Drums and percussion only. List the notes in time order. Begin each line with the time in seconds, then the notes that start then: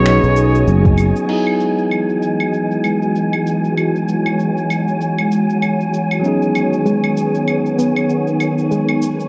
0.06 finger snap, shaker
0.23 shaker
0.36 shaker
0.55 shaker
0.68 shaker
0.85 kick, shaker
0.98 claves, shaker
1.16 shaker
1.29 crash, shaker
1.47 claves, shaker
1.60 shaker
1.78 shaker
1.91 claves, shaker
2.09 shaker
2.22 shaker
2.40 claves, shaker
2.53 shaker
2.71 shaker
2.84 claves, shaker
3.02 shaker
3.16 shaker
3.33 claves, shaker
3.47 shaker
3.64 shaker
3.78 claves, shaker
3.96 shaker
4.09 shaker
4.26 claves, shaker
4.39 shaker
4.57 shaker
4.70 claves, shaker
4.88 shaker
5.01 shaker
5.18 claves, shaker
5.32 shaker
5.50 shaker
5.62 claves, shaker
5.81 shaker
5.94 shaker
6.11 claves, shaker
6.24 shaker
6.42 shaker
6.55 claves, shaker
6.73 shaker
6.86 shaker
7.04 claves, shaker
7.17 shaker
7.35 shaker
7.48 claves, shaker
7.66 shaker
7.79 shaker
7.96 claves, shaker
8.09 shaker
8.27 shaker
8.40 claves, shaker
8.58 shaker
8.71 shaker
8.89 claves, shaker
9.02 shaker
9.20 shaker